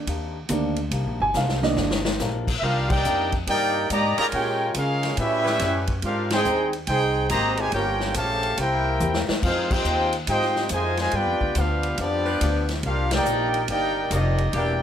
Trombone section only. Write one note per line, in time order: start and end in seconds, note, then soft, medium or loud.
2.62 2.90 F4 medium
2.90 3.33 A#3 medium
2.90 3.33 D#4 medium
2.90 3.33 G4 medium
3.47 3.87 A#3 medium
3.47 3.87 D#4 loud
3.47 3.87 G4 medium
3.90 4.16 D#3 medium
3.90 4.16 G3 medium
3.90 4.16 A#3 medium
4.18 4.24 D#3 medium
4.18 4.25 G3 medium
4.18 4.24 A#3 medium
4.34 4.73 G#3 loud
4.34 4.73 C#4 medium
4.34 4.73 G4 medium
4.74 5.17 G#3 medium
4.74 5.17 C#4 medium
4.74 5.17 F4 medium
5.18 5.84 G3 medium
5.18 5.84 C#4 medium
5.18 5.84 E4 loud
6.03 6.29 F4 medium
6.32 6.71 C4 loud
6.32 6.71 D#4 medium
6.32 6.71 G#4 loud
6.89 7.28 C4 loud
6.89 7.28 D#4 medium
6.89 7.28 G#4 medium
7.31 7.56 A#3 medium
7.59 7.73 C3 medium
7.59 7.73 D#3 medium
7.59 7.73 G#3 medium
7.74 8.13 A#3 loud
7.74 8.13 C#4 medium
7.74 8.13 G4 loud
8.14 8.57 C#3 medium
8.14 8.57 F3 medium
8.14 8.57 A3 medium
8.58 9.25 A#3 medium
8.58 9.25 E4 medium
8.58 9.24 G4 medium
9.43 9.69 G#3 medium
9.43 9.69 C4 medium
9.43 9.69 F4 medium
9.71 10.13 C4 medium
9.71 10.14 D#4 medium
9.71 10.14 G4 medium
10.27 10.67 C4 medium
10.27 10.67 D#4 medium
10.27 10.67 G4 medium
10.71 10.98 C3 medium
10.71 10.98 D#3 medium
10.71 10.98 G#3 medium
10.99 11.12 C3 medium
10.99 11.13 D#3 medium
10.99 11.12 G#3 medium
11.14 11.56 B3 medium
11.14 11.56 D4 medium
11.14 11.56 G4 medium
11.58 11.99 B3 medium
11.58 11.99 D4 medium
11.58 11.99 F4 medium
12.00 12.66 F3 medium
12.00 12.66 B3 medium
12.00 12.66 D4 medium
12.85 13.10 F4 medium
13.12 13.65 A#3 medium
13.12 13.65 D#4 medium
13.12 13.65 G4 medium
13.69 14.08 A#3 medium
13.69 14.08 D#4 medium
13.69 14.08 G4 medium
14.12 14.54 G3 medium
14.12 14.53 A#3 medium
14.12 14.54 D#4 medium
14.54 14.82 A#3 medium
14.54 14.82 D4 medium
14.54 14.82 G4 medium